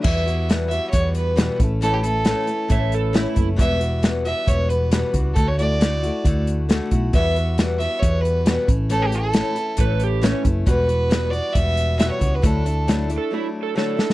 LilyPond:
<<
  \new Staff \with { instrumentName = "Fiddle" } { \time 4/4 \key e \dorian \tempo 4 = 136 e''4 r8 e''8 cis''8 b'4 r8 | a'16 g'16 a'2 r4. | e''4 r8 e''8 cis''8 b'4 r8 | a'16 cis''16 d''2 r4. |
e''4 r8 e''8 cis''8 b'4 r8 | a'16 g'16 a'2 r4. | b'4. d''8 e''4 e''16 cis''8 b'16 | a'4. r2 r8 | }
  \new Staff \with { instrumentName = "Electric slide guitar" } { \time 4/4 \key e \dorian r1 | r2 e''8 a'8 e'8. r16 | r1 | r1 |
r1 | r2 b'8 g'8 cis'8 r8 | r1 | r4 \tuplet 3/2 { r4 a'8 e'8 r8 a'8 } a'8. r16 | }
  \new Staff \with { instrumentName = "Steel-string acoustic guitar" } { \time 4/4 \key e \dorian <e, b, e g b fis'>8 <e g b fis'>8 <e, b, e g b fis'>8 <e g b fis'>8 <e g b fis'>4 <e, b, e g b fis'>8 <a cis' e'>8 | <a, e a cis' e'>8 <a cis' e'>8 <a, e a cis' e'>8 <a cis' e'>8 <e a cis' e'>4 <a, e a cis' e'>8 <a cis' e'>8 | <e, b, e g b fis'>8 <e g b fis'>8 <e, b, e g b fis'>8 <e g b fis'>8 <e g b fis'>4 <e, b, e g b fis'>8 <e g b fis'>8 | <d a e' fis'>8 <a e' fis'>8 <d a e' fis'>8 <a e' fis'>8 <d a e' fis'>4 <d a e' fis'>8 <a e' fis'>8 |
<e, b, e g b fis'>8 <e g b fis'>8 <e, b, e g b fis'>8 <e g b fis'>8 <e g b fis'>4 <e, b, e g b fis'>8 <a cis' e'>8 | <a, e a cis' e'>8 <a cis' e'>8 <a, e a cis' e'>8 <a cis' e'>8 <e a cis' e'>4 <a, e a cis' e'>8 <a cis' e'>8 | <e, b, e g b fis'>8 <e g b fis'>8 <e, b, e g b fis'>8 <e g b fis'>8 <e g b fis'>4 <e, b, e g b fis'>8 <e g b fis'>8 | <d fis a d' e'>8 <a d' e'>8 <d fis a d' e'>8 <a d' e'>8 <fis a d' e'>4 <d fis a d' e'>8 <a d' e'>8 | }
  \new Staff \with { instrumentName = "Picked electric bass" } { \clef bass \time 4/4 \key e \dorian e,2 e,4. a,,8~ | a,,4. r8 a,,4. fis,,8 | e,,2 e,,4. cis,8 | d,2 d,4. b,,8 |
e,2 e,4. a,,8~ | a,,4. r8 a,,4. fis,,8 | e,,2 e,,4. cis,8 | d,2 r2 | }
  \new DrumStaff \with { instrumentName = "Drums" } \drummode { \time 4/4 <cymc bd>8 hh8 <hh sn>8 hh8 <hh bd>8 hh8 <hh sn>8 <hh bd>8 | hh8 hh8 <hh sn>8 hh8 <hh bd>8 hh8 <hh sn>8 <hh bd>8 | <hh bd>8 hh8 <hh sn>8 hh8 <hh bd>8 hh8 <hh sn>8 <hh bd>8 | <hh bd>8 hh8 <hh sn>8 hh8 <hh bd>8 hh8 <hh sn>8 <hh bd>8 |
<hh bd>8 hh8 <hh sn>8 hh8 <hh bd>8 hh8 <hh sn>8 <hh bd>8 | hh8 hh8 <hh sn>8 hh8 <hh bd>8 hh8 <hh sn>8 <hh bd>8 | <hh bd>8 hh8 <hh sn>8 hh8 <hh bd>8 hh8 <hh sn>8 <hh bd>8 | <hh bd>8 hh8 <hh sn>8 hh8 r4 sn8 sn16 sn16 | }
>>